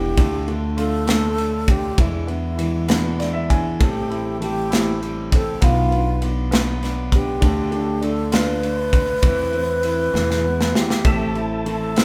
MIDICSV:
0, 0, Header, 1, 7, 480
1, 0, Start_track
1, 0, Key_signature, 0, "minor"
1, 0, Tempo, 604839
1, 139, Time_signature, 6, 3, 24, 8
1, 9560, End_track
2, 0, Start_track
2, 0, Title_t, "Tonewheel organ"
2, 0, Program_c, 0, 16
2, 8769, Note_on_c, 0, 76, 58
2, 8772, Note_on_c, 0, 81, 68
2, 8773, Note_on_c, 0, 69, 55
2, 9560, Note_off_c, 0, 69, 0
2, 9560, Note_off_c, 0, 76, 0
2, 9560, Note_off_c, 0, 81, 0
2, 9560, End_track
3, 0, Start_track
3, 0, Title_t, "Alto flute"
3, 0, Program_c, 1, 73
3, 0, Note_on_c, 1, 67, 93
3, 404, Note_off_c, 1, 67, 0
3, 625, Note_on_c, 1, 69, 105
3, 1348, Note_on_c, 1, 67, 90
3, 1360, Note_off_c, 1, 69, 0
3, 1591, Note_on_c, 1, 64, 71
3, 1603, Note_off_c, 1, 67, 0
3, 2787, Note_off_c, 1, 64, 0
3, 3025, Note_on_c, 1, 67, 87
3, 3473, Note_off_c, 1, 67, 0
3, 3517, Note_on_c, 1, 67, 104
3, 3959, Note_off_c, 1, 67, 0
3, 4235, Note_on_c, 1, 69, 106
3, 4472, Note_on_c, 1, 65, 92
3, 4484, Note_off_c, 1, 69, 0
3, 5004, Note_off_c, 1, 65, 0
3, 5669, Note_on_c, 1, 67, 99
3, 6381, Note_on_c, 1, 69, 92
3, 6393, Note_off_c, 1, 67, 0
3, 6624, Note_on_c, 1, 71, 112
3, 6636, Note_off_c, 1, 69, 0
3, 8543, Note_on_c, 1, 67, 95
3, 8555, Note_off_c, 1, 71, 0
3, 9046, Note_off_c, 1, 67, 0
3, 9270, Note_on_c, 1, 69, 99
3, 9560, Note_off_c, 1, 69, 0
3, 9560, End_track
4, 0, Start_track
4, 0, Title_t, "Steel-string acoustic guitar"
4, 0, Program_c, 2, 25
4, 0, Note_on_c, 2, 52, 47
4, 0, Note_on_c, 2, 55, 49
4, 0, Note_on_c, 2, 62, 51
4, 0, Note_on_c, 2, 64, 51
4, 127, Note_off_c, 2, 52, 0
4, 130, Note_on_c, 2, 50, 73
4, 134, Note_off_c, 2, 62, 0
4, 135, Note_off_c, 2, 55, 0
4, 135, Note_off_c, 2, 64, 0
4, 138, Note_on_c, 2, 57, 79
4, 143, Note_on_c, 2, 62, 77
4, 150, Note_on_c, 2, 65, 79
4, 357, Note_off_c, 2, 65, 0
4, 367, Note_on_c, 2, 65, 61
4, 372, Note_off_c, 2, 62, 0
4, 373, Note_off_c, 2, 50, 0
4, 377, Note_off_c, 2, 57, 0
4, 381, Note_on_c, 2, 62, 52
4, 393, Note_on_c, 2, 57, 48
4, 604, Note_on_c, 2, 50, 68
4, 608, Note_off_c, 2, 57, 0
4, 610, Note_off_c, 2, 65, 0
4, 617, Note_off_c, 2, 62, 0
4, 617, Note_on_c, 2, 57, 65
4, 626, Note_on_c, 2, 62, 65
4, 634, Note_on_c, 2, 65, 72
4, 841, Note_off_c, 2, 65, 0
4, 848, Note_off_c, 2, 50, 0
4, 848, Note_off_c, 2, 62, 0
4, 851, Note_on_c, 2, 65, 66
4, 854, Note_off_c, 2, 57, 0
4, 858, Note_on_c, 2, 62, 63
4, 862, Note_on_c, 2, 57, 53
4, 869, Note_on_c, 2, 50, 57
4, 1074, Note_off_c, 2, 50, 0
4, 1083, Note_on_c, 2, 50, 56
4, 1084, Note_off_c, 2, 57, 0
4, 1090, Note_off_c, 2, 65, 0
4, 1092, Note_off_c, 2, 62, 0
4, 1094, Note_on_c, 2, 57, 50
4, 1101, Note_on_c, 2, 62, 63
4, 1110, Note_on_c, 2, 65, 52
4, 1314, Note_off_c, 2, 65, 0
4, 1324, Note_on_c, 2, 65, 58
4, 1326, Note_off_c, 2, 50, 0
4, 1329, Note_off_c, 2, 62, 0
4, 1331, Note_off_c, 2, 57, 0
4, 1338, Note_on_c, 2, 62, 46
4, 1349, Note_on_c, 2, 57, 41
4, 1566, Note_off_c, 2, 65, 0
4, 1566, Note_on_c, 2, 40, 75
4, 1571, Note_on_c, 2, 47, 72
4, 1572, Note_off_c, 2, 62, 0
4, 1574, Note_off_c, 2, 57, 0
4, 1576, Note_on_c, 2, 52, 68
4, 1577, Note_on_c, 2, 56, 76
4, 1581, Note_on_c, 2, 62, 87
4, 1586, Note_on_c, 2, 64, 72
4, 1795, Note_off_c, 2, 64, 0
4, 1805, Note_off_c, 2, 62, 0
4, 1805, Note_on_c, 2, 64, 53
4, 1808, Note_off_c, 2, 40, 0
4, 1810, Note_off_c, 2, 47, 0
4, 1813, Note_off_c, 2, 52, 0
4, 1813, Note_off_c, 2, 56, 0
4, 1814, Note_on_c, 2, 62, 49
4, 1824, Note_on_c, 2, 56, 44
4, 1830, Note_on_c, 2, 52, 45
4, 2030, Note_off_c, 2, 52, 0
4, 2039, Note_off_c, 2, 56, 0
4, 2039, Note_on_c, 2, 52, 62
4, 2048, Note_off_c, 2, 64, 0
4, 2049, Note_off_c, 2, 62, 0
4, 2049, Note_on_c, 2, 56, 57
4, 2059, Note_on_c, 2, 62, 60
4, 2068, Note_on_c, 2, 64, 54
4, 2275, Note_off_c, 2, 64, 0
4, 2279, Note_off_c, 2, 62, 0
4, 2285, Note_off_c, 2, 56, 0
4, 2285, Note_on_c, 2, 64, 71
4, 2287, Note_off_c, 2, 52, 0
4, 2289, Note_on_c, 2, 62, 76
4, 2295, Note_on_c, 2, 56, 62
4, 2298, Note_on_c, 2, 52, 60
4, 2300, Note_on_c, 2, 47, 61
4, 2304, Note_on_c, 2, 40, 64
4, 2516, Note_off_c, 2, 52, 0
4, 2525, Note_off_c, 2, 56, 0
4, 2525, Note_on_c, 2, 52, 55
4, 2530, Note_off_c, 2, 64, 0
4, 2533, Note_off_c, 2, 62, 0
4, 2534, Note_on_c, 2, 56, 70
4, 2538, Note_off_c, 2, 47, 0
4, 2540, Note_off_c, 2, 40, 0
4, 2544, Note_on_c, 2, 62, 64
4, 2550, Note_on_c, 2, 64, 67
4, 2756, Note_off_c, 2, 64, 0
4, 2765, Note_on_c, 2, 64, 53
4, 2769, Note_off_c, 2, 62, 0
4, 2772, Note_off_c, 2, 52, 0
4, 2776, Note_off_c, 2, 56, 0
4, 2778, Note_on_c, 2, 62, 53
4, 2785, Note_on_c, 2, 56, 50
4, 2794, Note_on_c, 2, 52, 45
4, 3006, Note_off_c, 2, 52, 0
4, 3009, Note_on_c, 2, 45, 58
4, 3013, Note_off_c, 2, 64, 0
4, 3016, Note_on_c, 2, 52, 70
4, 3017, Note_off_c, 2, 56, 0
4, 3019, Note_off_c, 2, 62, 0
4, 3020, Note_on_c, 2, 55, 65
4, 3025, Note_on_c, 2, 60, 65
4, 3028, Note_on_c, 2, 67, 76
4, 3239, Note_off_c, 2, 67, 0
4, 3248, Note_on_c, 2, 67, 49
4, 3255, Note_off_c, 2, 45, 0
4, 3255, Note_off_c, 2, 60, 0
4, 3259, Note_off_c, 2, 52, 0
4, 3261, Note_off_c, 2, 55, 0
4, 3265, Note_on_c, 2, 60, 48
4, 3277, Note_on_c, 2, 55, 48
4, 3493, Note_on_c, 2, 52, 51
4, 3495, Note_off_c, 2, 55, 0
4, 3496, Note_off_c, 2, 67, 0
4, 3504, Note_off_c, 2, 60, 0
4, 3504, Note_on_c, 2, 55, 58
4, 3513, Note_on_c, 2, 60, 68
4, 3521, Note_on_c, 2, 67, 71
4, 3727, Note_off_c, 2, 67, 0
4, 3732, Note_off_c, 2, 60, 0
4, 3737, Note_off_c, 2, 55, 0
4, 3737, Note_on_c, 2, 67, 61
4, 3739, Note_off_c, 2, 52, 0
4, 3742, Note_on_c, 2, 60, 64
4, 3747, Note_on_c, 2, 55, 60
4, 3752, Note_on_c, 2, 52, 58
4, 3756, Note_on_c, 2, 45, 62
4, 3963, Note_off_c, 2, 52, 0
4, 3972, Note_on_c, 2, 52, 59
4, 3973, Note_off_c, 2, 55, 0
4, 3981, Note_off_c, 2, 60, 0
4, 3981, Note_off_c, 2, 67, 0
4, 3983, Note_on_c, 2, 55, 59
4, 3990, Note_off_c, 2, 45, 0
4, 3991, Note_on_c, 2, 60, 59
4, 3999, Note_on_c, 2, 67, 60
4, 4202, Note_off_c, 2, 67, 0
4, 4211, Note_on_c, 2, 67, 50
4, 4216, Note_off_c, 2, 60, 0
4, 4218, Note_off_c, 2, 52, 0
4, 4223, Note_off_c, 2, 55, 0
4, 4226, Note_on_c, 2, 60, 52
4, 4236, Note_on_c, 2, 55, 40
4, 4454, Note_on_c, 2, 59, 74
4, 4457, Note_off_c, 2, 55, 0
4, 4457, Note_off_c, 2, 67, 0
4, 4461, Note_on_c, 2, 62, 68
4, 4464, Note_off_c, 2, 60, 0
4, 4469, Note_on_c, 2, 65, 81
4, 4472, Note_on_c, 2, 71, 78
4, 4679, Note_off_c, 2, 71, 0
4, 4688, Note_on_c, 2, 71, 58
4, 4695, Note_off_c, 2, 65, 0
4, 4698, Note_off_c, 2, 59, 0
4, 4701, Note_off_c, 2, 62, 0
4, 4704, Note_on_c, 2, 65, 49
4, 4717, Note_on_c, 2, 62, 46
4, 4931, Note_off_c, 2, 62, 0
4, 4931, Note_on_c, 2, 59, 57
4, 4934, Note_off_c, 2, 71, 0
4, 4940, Note_on_c, 2, 62, 69
4, 4941, Note_off_c, 2, 65, 0
4, 4952, Note_on_c, 2, 65, 57
4, 4958, Note_on_c, 2, 71, 66
4, 5159, Note_off_c, 2, 71, 0
4, 5168, Note_off_c, 2, 65, 0
4, 5169, Note_on_c, 2, 71, 77
4, 5172, Note_off_c, 2, 62, 0
4, 5173, Note_off_c, 2, 59, 0
4, 5177, Note_on_c, 2, 65, 73
4, 5182, Note_on_c, 2, 62, 60
4, 5188, Note_on_c, 2, 59, 64
4, 5397, Note_off_c, 2, 59, 0
4, 5407, Note_on_c, 2, 59, 68
4, 5408, Note_off_c, 2, 62, 0
4, 5411, Note_off_c, 2, 71, 0
4, 5415, Note_off_c, 2, 65, 0
4, 5418, Note_on_c, 2, 62, 66
4, 5425, Note_on_c, 2, 65, 70
4, 5433, Note_on_c, 2, 71, 82
4, 5638, Note_off_c, 2, 71, 0
4, 5647, Note_on_c, 2, 71, 54
4, 5649, Note_off_c, 2, 59, 0
4, 5653, Note_off_c, 2, 65, 0
4, 5655, Note_off_c, 2, 62, 0
4, 5662, Note_on_c, 2, 65, 53
4, 5674, Note_on_c, 2, 62, 49
4, 5882, Note_on_c, 2, 50, 85
4, 5886, Note_off_c, 2, 62, 0
4, 5889, Note_off_c, 2, 71, 0
4, 5891, Note_on_c, 2, 57, 75
4, 5892, Note_off_c, 2, 65, 0
4, 5896, Note_on_c, 2, 62, 85
4, 5901, Note_on_c, 2, 65, 85
4, 6110, Note_off_c, 2, 65, 0
4, 6120, Note_on_c, 2, 65, 56
4, 6125, Note_off_c, 2, 62, 0
4, 6126, Note_off_c, 2, 50, 0
4, 6131, Note_off_c, 2, 57, 0
4, 6135, Note_on_c, 2, 62, 48
4, 6147, Note_on_c, 2, 57, 43
4, 6361, Note_on_c, 2, 50, 66
4, 6364, Note_off_c, 2, 57, 0
4, 6364, Note_off_c, 2, 65, 0
4, 6372, Note_off_c, 2, 62, 0
4, 6373, Note_on_c, 2, 57, 59
4, 6381, Note_on_c, 2, 62, 56
4, 6388, Note_on_c, 2, 65, 73
4, 6594, Note_off_c, 2, 65, 0
4, 6600, Note_off_c, 2, 62, 0
4, 6604, Note_on_c, 2, 65, 74
4, 6605, Note_off_c, 2, 50, 0
4, 6607, Note_off_c, 2, 57, 0
4, 6610, Note_on_c, 2, 62, 68
4, 6617, Note_on_c, 2, 57, 59
4, 6622, Note_on_c, 2, 50, 61
4, 6829, Note_off_c, 2, 50, 0
4, 6838, Note_on_c, 2, 50, 63
4, 6840, Note_off_c, 2, 57, 0
4, 6846, Note_off_c, 2, 65, 0
4, 6849, Note_off_c, 2, 62, 0
4, 6849, Note_on_c, 2, 57, 63
4, 6859, Note_on_c, 2, 62, 61
4, 6865, Note_on_c, 2, 65, 63
4, 7067, Note_off_c, 2, 65, 0
4, 7077, Note_on_c, 2, 65, 48
4, 7082, Note_off_c, 2, 62, 0
4, 7083, Note_off_c, 2, 50, 0
4, 7088, Note_off_c, 2, 57, 0
4, 7091, Note_on_c, 2, 62, 46
4, 7103, Note_on_c, 2, 57, 41
4, 7315, Note_off_c, 2, 57, 0
4, 7316, Note_on_c, 2, 52, 74
4, 7322, Note_off_c, 2, 65, 0
4, 7325, Note_on_c, 2, 57, 70
4, 7328, Note_off_c, 2, 62, 0
4, 7331, Note_on_c, 2, 60, 86
4, 7335, Note_on_c, 2, 64, 83
4, 7548, Note_off_c, 2, 64, 0
4, 7557, Note_on_c, 2, 64, 65
4, 7560, Note_off_c, 2, 60, 0
4, 7562, Note_off_c, 2, 52, 0
4, 7567, Note_off_c, 2, 57, 0
4, 7570, Note_on_c, 2, 60, 48
4, 7583, Note_on_c, 2, 57, 52
4, 7797, Note_off_c, 2, 57, 0
4, 7798, Note_on_c, 2, 52, 62
4, 7803, Note_off_c, 2, 64, 0
4, 7805, Note_off_c, 2, 60, 0
4, 7806, Note_on_c, 2, 57, 69
4, 7815, Note_on_c, 2, 60, 65
4, 7823, Note_on_c, 2, 64, 65
4, 8030, Note_off_c, 2, 64, 0
4, 8040, Note_off_c, 2, 60, 0
4, 8040, Note_on_c, 2, 64, 71
4, 8043, Note_on_c, 2, 59, 74
4, 8044, Note_off_c, 2, 52, 0
4, 8045, Note_off_c, 2, 57, 0
4, 8048, Note_on_c, 2, 56, 66
4, 8052, Note_on_c, 2, 52, 57
4, 8055, Note_on_c, 2, 47, 68
4, 8059, Note_on_c, 2, 40, 63
4, 8267, Note_off_c, 2, 52, 0
4, 8276, Note_on_c, 2, 52, 59
4, 8278, Note_off_c, 2, 56, 0
4, 8285, Note_off_c, 2, 64, 0
4, 8287, Note_off_c, 2, 59, 0
4, 8287, Note_on_c, 2, 56, 58
4, 8293, Note_off_c, 2, 47, 0
4, 8295, Note_off_c, 2, 40, 0
4, 8297, Note_on_c, 2, 59, 58
4, 8304, Note_on_c, 2, 64, 72
4, 8511, Note_off_c, 2, 64, 0
4, 8520, Note_on_c, 2, 64, 49
4, 8522, Note_off_c, 2, 59, 0
4, 8524, Note_off_c, 2, 52, 0
4, 8530, Note_off_c, 2, 56, 0
4, 8532, Note_on_c, 2, 59, 44
4, 8539, Note_on_c, 2, 56, 46
4, 8546, Note_on_c, 2, 52, 42
4, 8756, Note_off_c, 2, 52, 0
4, 8761, Note_on_c, 2, 45, 71
4, 8766, Note_on_c, 2, 52, 59
4, 8767, Note_off_c, 2, 64, 0
4, 8768, Note_off_c, 2, 56, 0
4, 8771, Note_on_c, 2, 57, 68
4, 8773, Note_off_c, 2, 59, 0
4, 8776, Note_on_c, 2, 60, 80
4, 8779, Note_on_c, 2, 64, 73
4, 8992, Note_off_c, 2, 64, 0
4, 9001, Note_on_c, 2, 64, 51
4, 9006, Note_off_c, 2, 60, 0
4, 9008, Note_off_c, 2, 45, 0
4, 9011, Note_off_c, 2, 52, 0
4, 9014, Note_off_c, 2, 57, 0
4, 9016, Note_on_c, 2, 60, 49
4, 9030, Note_on_c, 2, 57, 40
4, 9245, Note_on_c, 2, 52, 58
4, 9247, Note_off_c, 2, 57, 0
4, 9249, Note_off_c, 2, 64, 0
4, 9254, Note_off_c, 2, 60, 0
4, 9256, Note_on_c, 2, 57, 55
4, 9263, Note_on_c, 2, 60, 59
4, 9271, Note_on_c, 2, 64, 74
4, 9476, Note_off_c, 2, 64, 0
4, 9484, Note_off_c, 2, 60, 0
4, 9486, Note_on_c, 2, 64, 67
4, 9489, Note_off_c, 2, 57, 0
4, 9491, Note_off_c, 2, 52, 0
4, 9494, Note_on_c, 2, 60, 65
4, 9498, Note_on_c, 2, 57, 57
4, 9502, Note_on_c, 2, 52, 54
4, 9506, Note_on_c, 2, 45, 53
4, 9560, Note_off_c, 2, 45, 0
4, 9560, Note_off_c, 2, 52, 0
4, 9560, Note_off_c, 2, 57, 0
4, 9560, Note_off_c, 2, 60, 0
4, 9560, Note_off_c, 2, 64, 0
4, 9560, End_track
5, 0, Start_track
5, 0, Title_t, "Grand piano"
5, 0, Program_c, 3, 0
5, 0, Control_c, 3, 64, 127
5, 0, Note_on_c, 3, 52, 51
5, 0, Note_on_c, 3, 59, 60
5, 112, Note_off_c, 3, 52, 0
5, 118, Note_off_c, 3, 59, 0
5, 135, Note_on_c, 3, 50, 56
5, 148, Control_c, 3, 64, 0
5, 300, Control_c, 3, 64, 127
5, 378, Note_on_c, 3, 57, 44
5, 612, Note_on_c, 3, 65, 52
5, 835, Note_off_c, 3, 57, 0
5, 847, Note_on_c, 3, 57, 60
5, 1536, Note_off_c, 3, 50, 0
5, 1539, Note_off_c, 3, 65, 0
5, 1545, Note_off_c, 3, 57, 0
5, 1565, Note_on_c, 3, 52, 63
5, 1580, Control_c, 3, 64, 0
5, 1702, Control_c, 3, 64, 127
5, 1805, Note_on_c, 3, 59, 51
5, 2031, Note_off_c, 3, 52, 0
5, 2043, Note_on_c, 3, 52, 53
5, 2277, Note_off_c, 3, 59, 0
5, 2289, Note_on_c, 3, 59, 60
5, 2534, Note_on_c, 3, 74, 62
5, 2644, Note_on_c, 3, 76, 73
5, 2646, Note_off_c, 3, 74, 0
5, 2762, Note_off_c, 3, 76, 0
5, 2777, Note_on_c, 3, 80, 67
5, 2985, Note_off_c, 3, 52, 0
5, 2994, Note_off_c, 3, 59, 0
5, 3002, Note_off_c, 3, 80, 0
5, 3014, Note_on_c, 3, 57, 57
5, 3027, Control_c, 3, 64, 0
5, 3178, Control_c, 3, 64, 127
5, 3255, Note_on_c, 3, 64, 46
5, 3483, Note_off_c, 3, 57, 0
5, 3495, Note_on_c, 3, 57, 47
5, 3721, Note_off_c, 3, 64, 0
5, 3733, Note_on_c, 3, 64, 64
5, 4431, Note_off_c, 3, 57, 0
5, 4437, Note_off_c, 3, 64, 0
5, 4453, Note_on_c, 3, 59, 65
5, 4473, Control_c, 3, 64, 0
5, 4592, Control_c, 3, 64, 127
5, 4689, Note_off_c, 3, 59, 0
5, 4701, Note_on_c, 3, 59, 42
5, 4923, Note_off_c, 3, 59, 0
5, 4935, Note_on_c, 3, 59, 48
5, 5156, Note_off_c, 3, 59, 0
5, 5168, Note_on_c, 3, 59, 65
5, 5866, Note_off_c, 3, 59, 0
5, 5880, Note_on_c, 3, 50, 71
5, 5902, Control_c, 3, 64, 0
5, 6059, Control_c, 3, 64, 127
5, 6120, Note_on_c, 3, 57, 51
5, 6360, Note_on_c, 3, 62, 58
5, 6603, Note_on_c, 3, 65, 61
5, 7053, Note_off_c, 3, 57, 0
5, 7290, Note_off_c, 3, 50, 0
5, 7294, Note_off_c, 3, 62, 0
5, 7303, Note_off_c, 3, 65, 0
5, 7319, Note_on_c, 3, 52, 61
5, 7338, Control_c, 3, 64, 0
5, 7491, Control_c, 3, 64, 127
5, 7563, Note_on_c, 3, 60, 45
5, 7803, Note_on_c, 3, 64, 50
5, 8023, Note_off_c, 3, 52, 0
5, 8032, Note_off_c, 3, 60, 0
5, 8039, Note_off_c, 3, 64, 0
5, 8041, Note_on_c, 3, 52, 67
5, 8060, Control_c, 3, 64, 0
5, 8188, Control_c, 3, 64, 127
5, 8283, Note_on_c, 3, 59, 51
5, 8518, Note_off_c, 3, 52, 0
5, 8530, Note_on_c, 3, 52, 51
5, 8755, Note_off_c, 3, 59, 0
5, 8765, Note_off_c, 3, 52, 0
5, 8770, Note_on_c, 3, 57, 60
5, 8784, Control_c, 3, 64, 0
5, 8912, Control_c, 3, 64, 127
5, 9015, Note_on_c, 3, 64, 45
5, 9241, Note_off_c, 3, 57, 0
5, 9253, Note_on_c, 3, 57, 51
5, 9483, Note_off_c, 3, 64, 0
5, 9495, Note_on_c, 3, 64, 60
5, 9560, Note_off_c, 3, 57, 0
5, 9560, Note_off_c, 3, 64, 0
5, 9560, End_track
6, 0, Start_track
6, 0, Title_t, "Upright bass"
6, 0, Program_c, 4, 32
6, 0, Note_on_c, 4, 28, 106
6, 108, Note_off_c, 4, 28, 0
6, 143, Note_on_c, 4, 38, 116
6, 1540, Note_off_c, 4, 38, 0
6, 1573, Note_on_c, 4, 40, 118
6, 2988, Note_off_c, 4, 40, 0
6, 3024, Note_on_c, 4, 33, 106
6, 4434, Note_off_c, 4, 33, 0
6, 4463, Note_on_c, 4, 35, 124
6, 5861, Note_off_c, 4, 35, 0
6, 5891, Note_on_c, 4, 38, 121
6, 7295, Note_off_c, 4, 38, 0
6, 7323, Note_on_c, 4, 40, 106
6, 8015, Note_off_c, 4, 40, 0
6, 8044, Note_on_c, 4, 40, 103
6, 8500, Note_off_c, 4, 40, 0
6, 8770, Note_on_c, 4, 33, 106
6, 9560, Note_off_c, 4, 33, 0
6, 9560, End_track
7, 0, Start_track
7, 0, Title_t, "Drums"
7, 138, Note_on_c, 9, 51, 70
7, 139, Note_on_c, 9, 36, 114
7, 217, Note_off_c, 9, 51, 0
7, 218, Note_off_c, 9, 36, 0
7, 379, Note_on_c, 9, 51, 36
7, 459, Note_off_c, 9, 51, 0
7, 617, Note_on_c, 9, 51, 60
7, 696, Note_off_c, 9, 51, 0
7, 852, Note_on_c, 9, 51, 72
7, 863, Note_on_c, 9, 38, 120
7, 932, Note_off_c, 9, 51, 0
7, 943, Note_off_c, 9, 38, 0
7, 1097, Note_on_c, 9, 51, 50
7, 1176, Note_off_c, 9, 51, 0
7, 1333, Note_on_c, 9, 36, 109
7, 1336, Note_on_c, 9, 51, 59
7, 1412, Note_off_c, 9, 36, 0
7, 1416, Note_off_c, 9, 51, 0
7, 1572, Note_on_c, 9, 36, 117
7, 1572, Note_on_c, 9, 51, 67
7, 1651, Note_off_c, 9, 36, 0
7, 1652, Note_off_c, 9, 51, 0
7, 1812, Note_on_c, 9, 51, 35
7, 1891, Note_off_c, 9, 51, 0
7, 2053, Note_on_c, 9, 51, 62
7, 2132, Note_off_c, 9, 51, 0
7, 2289, Note_on_c, 9, 51, 77
7, 2300, Note_on_c, 9, 38, 114
7, 2369, Note_off_c, 9, 51, 0
7, 2379, Note_off_c, 9, 38, 0
7, 2537, Note_on_c, 9, 51, 49
7, 2546, Note_on_c, 9, 38, 35
7, 2617, Note_off_c, 9, 51, 0
7, 2625, Note_off_c, 9, 38, 0
7, 2779, Note_on_c, 9, 36, 92
7, 2784, Note_on_c, 9, 51, 62
7, 2859, Note_off_c, 9, 36, 0
7, 2863, Note_off_c, 9, 51, 0
7, 3020, Note_on_c, 9, 36, 119
7, 3020, Note_on_c, 9, 51, 69
7, 3099, Note_off_c, 9, 51, 0
7, 3100, Note_off_c, 9, 36, 0
7, 3265, Note_on_c, 9, 51, 35
7, 3345, Note_off_c, 9, 51, 0
7, 3506, Note_on_c, 9, 51, 58
7, 3585, Note_off_c, 9, 51, 0
7, 3745, Note_on_c, 9, 51, 73
7, 3756, Note_on_c, 9, 38, 114
7, 3825, Note_off_c, 9, 51, 0
7, 3835, Note_off_c, 9, 38, 0
7, 3988, Note_on_c, 9, 51, 49
7, 4067, Note_off_c, 9, 51, 0
7, 4225, Note_on_c, 9, 36, 105
7, 4229, Note_on_c, 9, 51, 64
7, 4304, Note_off_c, 9, 36, 0
7, 4309, Note_off_c, 9, 51, 0
7, 4457, Note_on_c, 9, 51, 75
7, 4462, Note_on_c, 9, 36, 116
7, 4536, Note_off_c, 9, 51, 0
7, 4541, Note_off_c, 9, 36, 0
7, 4699, Note_on_c, 9, 51, 37
7, 4778, Note_off_c, 9, 51, 0
7, 4935, Note_on_c, 9, 51, 52
7, 5014, Note_off_c, 9, 51, 0
7, 5175, Note_on_c, 9, 51, 73
7, 5186, Note_on_c, 9, 38, 123
7, 5255, Note_off_c, 9, 51, 0
7, 5265, Note_off_c, 9, 38, 0
7, 5418, Note_on_c, 9, 51, 46
7, 5427, Note_on_c, 9, 38, 36
7, 5498, Note_off_c, 9, 51, 0
7, 5506, Note_off_c, 9, 38, 0
7, 5652, Note_on_c, 9, 36, 96
7, 5657, Note_on_c, 9, 51, 64
7, 5732, Note_off_c, 9, 36, 0
7, 5737, Note_off_c, 9, 51, 0
7, 5888, Note_on_c, 9, 51, 81
7, 5890, Note_on_c, 9, 36, 117
7, 5968, Note_off_c, 9, 51, 0
7, 5969, Note_off_c, 9, 36, 0
7, 6126, Note_on_c, 9, 51, 37
7, 6206, Note_off_c, 9, 51, 0
7, 6368, Note_on_c, 9, 51, 56
7, 6448, Note_off_c, 9, 51, 0
7, 6605, Note_on_c, 9, 51, 78
7, 6616, Note_on_c, 9, 38, 120
7, 6684, Note_off_c, 9, 51, 0
7, 6695, Note_off_c, 9, 38, 0
7, 6851, Note_on_c, 9, 51, 49
7, 6930, Note_off_c, 9, 51, 0
7, 7086, Note_on_c, 9, 36, 108
7, 7090, Note_on_c, 9, 51, 68
7, 7166, Note_off_c, 9, 36, 0
7, 7170, Note_off_c, 9, 51, 0
7, 7320, Note_on_c, 9, 51, 76
7, 7324, Note_on_c, 9, 36, 117
7, 7400, Note_off_c, 9, 51, 0
7, 7403, Note_off_c, 9, 36, 0
7, 7563, Note_on_c, 9, 51, 32
7, 7642, Note_off_c, 9, 51, 0
7, 7801, Note_on_c, 9, 51, 57
7, 7881, Note_off_c, 9, 51, 0
7, 8056, Note_on_c, 9, 38, 60
7, 8135, Note_off_c, 9, 38, 0
7, 8178, Note_on_c, 9, 38, 53
7, 8257, Note_off_c, 9, 38, 0
7, 8417, Note_on_c, 9, 38, 84
7, 8496, Note_off_c, 9, 38, 0
7, 8534, Note_on_c, 9, 38, 98
7, 8613, Note_off_c, 9, 38, 0
7, 8653, Note_on_c, 9, 38, 91
7, 8732, Note_off_c, 9, 38, 0
7, 8766, Note_on_c, 9, 51, 68
7, 8768, Note_on_c, 9, 36, 116
7, 8846, Note_off_c, 9, 51, 0
7, 8847, Note_off_c, 9, 36, 0
7, 9010, Note_on_c, 9, 51, 33
7, 9089, Note_off_c, 9, 51, 0
7, 9254, Note_on_c, 9, 51, 56
7, 9334, Note_off_c, 9, 51, 0
7, 9494, Note_on_c, 9, 51, 72
7, 9505, Note_on_c, 9, 38, 113
7, 9560, Note_off_c, 9, 38, 0
7, 9560, Note_off_c, 9, 51, 0
7, 9560, End_track
0, 0, End_of_file